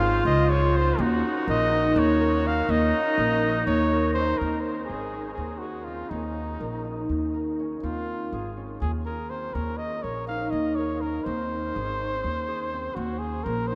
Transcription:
0.00 0.20 G#1 medium
0.00 0.97 C#3 medium
0.00 0.54 A#3 medium
0.00 0.80 C#4 medium
0.00 1.00 D#4 medium
0.00 0.97 F4 medium
0.00 1.02 F4 medium
0.00 0.49 G#4 medium
0.00 0.91 A#4 medium
0.00 0.97 C5 medium
0.00 0.21 F5 medium
0.25 0.91 C#2 medium
0.25 0.51 D#5 medium
0.49 2.77 G#4 medium
0.49 0.78 C#5 medium
0.74 1.04 C4 medium
0.74 1.02 C5 medium
0.98 1.20 D#2 medium
0.98 4.37 D#3 medium
0.98 2.45 C#4 medium
0.98 4.38 C#4 medium
0.98 2.43 D#4 medium
0.98 4.37 F#4 medium
0.98 1.48 F#4 medium
1.47 1.91 A#1 medium
1.47 2.20 A#4 medium
1.47 2.00 D#5 loud
1.71 3.42 D#4 medium
1.96 2.62 D#2 medium
1.96 2.48 C#5 medium
2.20 3.18 A#4 medium
2.45 2.68 C#4 medium
2.45 2.72 F5 medium
2.68 2.91 D#2 medium
2.68 4.15 C#4 medium
2.68 4.11 D#4 loud
2.68 3.66 D#5 medium
3.18 3.62 A#1 medium
3.18 3.91 A#4 medium
3.42 6.13 D#4 medium
3.67 4.33 D#2 medium
3.67 4.12 C#5 medium
3.91 6.03 A#4 medium
4.14 4.46 C#4 medium
4.14 4.40 C5 medium
4.38 4.85 D#2 medium
4.38 5.19 C4 medium
4.38 4.62 A#4 medium
4.61 4.87 C5 medium
4.85 5.33 G#4 medium
4.89 5.33 G#1 medium
4.89 5.62 G#4 medium
5.13 5.93 C#4 soft
5.34 5.60 G#4 medium
5.38 6.04 D#2 medium
5.58 5.85 F#4 medium
5.62 7.90 G#4 soft
5.84 6.17 C4 medium
5.84 6.11 F4 medium
6.09 6.55 D#2 medium
6.09 7.59 C#4 medium
6.09 7.09 D#4 medium
6.60 7.05 A#1 medium
6.60 7.33 A#4 soft
6.84 9.55 D#4 soft
7.09 7.76 D#2 medium
7.34 9.46 A#4 soft
7.59 7.89 C#4 medium
7.83 8.27 D#2 medium
7.83 8.63 C4 medium
7.83 8.53 F4 medium
8.32 8.76 G#1 medium
8.32 9.06 G#4 medium
8.57 9.36 C#4 soft
8.81 9.48 D#2 medium
8.81 8.92 G#4 medium
9.05 11.34 G#4 medium
9.05 9.31 A#4 medium
9.30 9.61 C4 medium
9.30 9.55 C5 medium
9.54 9.99 D#2 medium
9.54 11.02 C#4 medium
9.54 9.79 A#4 medium
9.77 10.04 D#5 medium
10.03 10.48 A#1 medium
10.03 10.77 A#4 medium
10.03 10.27 C#5 medium
10.27 12.99 D#4 soft
10.27 10.52 F5 medium
10.50 11.19 D#2 medium
10.50 10.77 D#5 medium
10.76 12.90 A#4 medium
10.76 11.03 C#5 medium
11.01 11.32 C#4 medium
11.01 11.26 A#4 medium
11.24 11.70 D#2 medium
11.24 12.06 C4 medium
11.24 12.97 C5 medium
11.75 12.20 G#1 medium
11.75 12.48 G#4 medium
12.00 12.80 C#4 soft
12.24 12.90 D#2 medium
12.48 13.75 G#4 medium
12.74 13.03 C4 medium
12.95 13.41 D#2 medium
12.95 13.75 C#4 medium
12.95 13.20 F#4 medium
13.19 13.45 G#4 medium
13.44 13.75 A#1 medium
13.44 13.69 A#4 medium
13.44 13.75 A#4 medium
13.67 13.75 C5 medium
13.72 13.75 D#4 medium

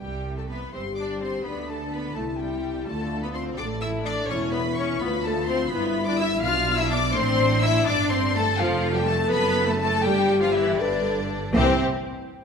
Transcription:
0.00 0.61 C2 medium
0.00 0.62 C3 soft
0.00 0.35 G3 medium
0.00 0.35 G4 medium
0.00 0.34 G5 medium
0.37 0.50 A3 soft
0.37 0.49 A4 soft
0.37 0.42 A5 soft
0.49 0.73 B3 medium
0.49 0.73 B4 soft
0.49 0.73 B5 medium
0.73 1.33 G1 soft
0.73 1.33 G2 soft
0.73 0.82 C4 medium
0.73 1.41 G4 medium
0.73 0.81 C5 soft
0.73 0.97 C6 medium
0.96 1.21 D4 medium
0.96 1.21 D5 medium
0.96 1.04 D6 medium
1.21 1.45 C4 medium
1.21 1.45 C5 soft
1.21 1.45 C6 medium
1.43 2.04 D2 medium
1.43 2.05 D3 medium
1.43 1.69 B3 medium
1.43 2.17 D4 medium
1.43 1.68 B4 medium
1.43 1.68 B5 medium
1.69 1.77 A3 medium
1.69 1.92 A4 medium
1.69 1.93 A5 medium
1.92 2.16 B3 medium
1.92 2.16 B4 medium
1.92 2.17 B5 medium
2.15 2.75 C2 medium
2.15 2.76 C3 medium
2.15 2.24 A3 medium
2.15 2.87 E4 medium
2.15 2.24 A4 medium
2.15 2.39 A5 medium
2.38 2.86 G3 medium
2.38 2.86 G4 medium
2.38 2.87 G5 medium
2.86 3.47 D2 medium
2.86 3.47 D3 medium
2.86 3.23 A3 medium
2.86 3.58 F4 medium
2.86 3.22 A4 medium
2.86 3.22 A5 medium
3.22 3.35 B3 medium
3.22 3.35 B4 medium
3.22 3.28 B5 medium
3.33 3.59 C4 medium
3.33 3.58 C5 medium
3.33 3.43 C6 medium
3.57 4.18 A1 medium
3.57 4.18 A2 medium
3.57 3.66 D4 medium
3.57 4.30 A4 medium
3.57 3.82 D5 medium
3.57 3.66 D6 medium
3.81 4.06 E4 medium
3.81 3.89 E5 medium
3.81 3.90 E6 medium
4.06 4.30 D4 medium
4.06 4.29 D5 medium
4.06 4.14 D6 medium
4.28 4.89 E1 medium
4.28 4.89 E2 medium
4.28 4.54 C#4 medium
4.28 5.00 E4 medium
4.28 4.53 C#5 medium
4.28 4.38 C#6 medium
4.52 4.61 B3 medium
4.52 4.77 B4 medium
4.52 4.77 B5 medium
4.75 5.01 C#4 medium
4.75 4.86 C#5 medium
4.75 5.01 C#6 medium
4.99 5.60 D2 medium
4.99 5.61 D2 medium
4.99 5.09 B3 medium
4.99 5.73 F4 medium
4.99 5.24 B4 medium
4.99 5.24 B5 medium
5.23 5.48 A3 medium
5.23 5.49 A4 medium
5.23 5.48 A5 medium
5.47 5.72 C4 medium
5.47 5.56 C5 medium
5.47 5.71 C6 medium
5.69 6.40 G1 medium
5.69 6.40 G2 medium
5.69 6.07 B3 medium
5.69 6.42 E4 medium
5.69 6.07 B4 medium
5.69 6.07 B5 medium
6.06 6.12 D4 medium
6.06 6.19 D5 medium
6.06 6.19 D6 loud
6.18 6.27 E4 medium
6.18 6.43 E5 medium
6.18 6.43 E6 loud
6.41 7.15 B1 medium
6.41 7.15 B2 medium
6.41 8.42 D4 medium
6.41 6.78 F4 medium
6.41 6.78 F5 medium
6.41 6.77 F6 loud
6.78 6.91 E4 loud
6.78 6.91 E5 medium
6.78 6.91 E6 loud
6.89 6.99 D4 medium
6.89 7.15 D5 medium
6.89 7.14 D6 loud
7.14 7.87 A1 medium
7.14 7.87 A2 medium
7.14 7.62 C4 loud
7.14 7.63 C5 loud
7.14 7.63 C6 loud
7.62 7.87 E4 loud
7.62 7.86 E5 medium
7.62 7.87 E6 loud
7.85 8.58 G1 medium
7.85 8.58 G2 medium
7.85 8.11 D4 loud
7.85 8.11 D5 medium
7.85 8.10 D6 loud
8.10 8.35 C4 loud
8.10 8.19 C5 medium
8.10 8.34 C6 loud
8.35 8.43 A3 medium
8.35 8.59 A4 loud
8.35 8.59 A5 loud
8.58 9.32 F1 medium
8.58 9.32 F2 medium
8.58 8.94 F3 loud
8.58 8.95 F4 medium
8.58 10.02 A4 medium
8.58 8.95 F5 loud
8.95 9.07 G3 medium
8.95 9.07 G4 medium
8.95 9.07 G5 loud
9.06 9.31 A3 medium
9.06 9.15 A4 loud
9.06 9.31 A5 loud
9.30 10.04 F#1 medium
9.30 10.04 F#2 medium
9.30 9.68 B3 loud
9.30 9.67 B4 loud
9.30 9.67 B5 loud
9.67 9.79 A3 medium
9.67 9.78 A4 medium
9.67 9.79 A5 loud
9.80 10.04 A3 medium
9.80 10.04 A4 medium
9.80 10.04 A5 loud
10.04 10.78 G1 medium
10.04 10.78 G2 medium
10.04 10.42 G3 medium
10.04 10.42 G4 medium
10.04 10.79 G4 medium
10.04 10.42 G5 loud
10.41 10.55 F3 medium
10.41 10.54 F4 medium
10.41 10.54 F5 medium
10.53 10.79 E3 medium
10.53 10.79 E4 medium
10.53 10.79 E5 loud
10.77 11.34 G1 medium
10.77 11.34 G2 medium
10.77 11.56 D3 medium
10.77 11.56 D4 medium
10.77 11.18 B4 medium
10.77 11.54 D5 loud
11.54 11.83 C2 loud
11.54 11.84 C3 loud
11.54 11.77 E3 medium
11.54 11.77 C4 medium
11.54 11.84 C4 loud
11.54 11.84 G4 loud
11.54 11.83 C5 loud

